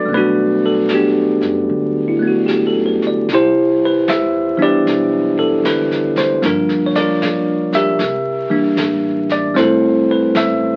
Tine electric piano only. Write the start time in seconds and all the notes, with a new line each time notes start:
Already playing: F#4 A4 B4 D5
0.06 G3 A3
0.13 B3 D4 B4
0.17 F#4
0.66 A4
0.94 B3 D4 G4
2.08 E4
2.19 A3 B3
2.27 F#4
2.47 G4
2.67 A4
2.86 B4
3.07 D5
3.33 E4 G4 C5
3.85 B4
4.10 E5
4.57 E3 G3 B3 D4
4.62 G4 B4 D5
5.39 A4
5.66 B4
6.18 C5
6.42 F3 G3 A#3 D4 F4 A#4
6.86 C#5
6.96 F4 A#4 D5
7.75 G4 A#4 E5
8.50 E3 G3 A#3 D4
9.32 D5
9.54 G3 A3 C4 E4 C5
9.59 A4
10.11 B4
10.37 E5